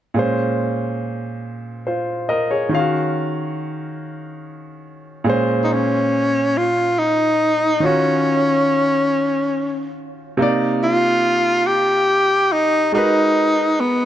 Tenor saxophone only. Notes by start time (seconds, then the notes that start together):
5.64 D#4
5.73 C#4
6.58 F4
6.99 D#4
7.85 C#4
10.83 F4
11.67 G4
12.52 D#4
12.95 D#4
13.80 B3